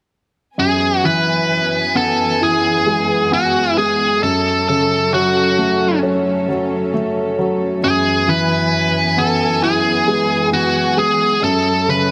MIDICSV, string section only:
0, 0, Header, 1, 2, 480
1, 0, Start_track
1, 0, Tempo, 909091
1, 306, Time_signature, 4, 2, 24, 8
1, 2705, Tempo, 899550
1, 6435, End_track
2, 0, Start_track
2, 0, Title_t, "String section"
2, 0, Program_c, 0, 48
2, 300, Note_on_c, 0, 80, 57
2, 302, Note_on_c, 0, 42, 49
2, 302, Note_on_c, 0, 59, 49
2, 304, Note_on_c, 0, 52, 45
2, 2205, Note_off_c, 0, 42, 0
2, 2205, Note_off_c, 0, 59, 0
2, 2205, Note_off_c, 0, 80, 0
2, 2206, Note_off_c, 0, 52, 0
2, 2228, Note_on_c, 0, 54, 54
2, 2228, Note_on_c, 0, 61, 50
2, 2228, Note_on_c, 0, 69, 60
2, 4129, Note_off_c, 0, 54, 0
2, 4129, Note_off_c, 0, 61, 0
2, 4129, Note_off_c, 0, 69, 0
2, 4147, Note_on_c, 0, 42, 62
2, 4147, Note_on_c, 0, 52, 53
2, 4147, Note_on_c, 0, 59, 50
2, 4147, Note_on_c, 0, 80, 65
2, 6044, Note_off_c, 0, 42, 0
2, 6044, Note_off_c, 0, 59, 0
2, 6045, Note_off_c, 0, 52, 0
2, 6045, Note_off_c, 0, 80, 0
2, 6064, Note_on_c, 0, 69, 62
2, 6065, Note_on_c, 0, 61, 47
2, 6066, Note_on_c, 0, 54, 57
2, 6435, Note_off_c, 0, 54, 0
2, 6435, Note_off_c, 0, 61, 0
2, 6435, Note_off_c, 0, 69, 0
2, 6435, End_track
0, 0, End_of_file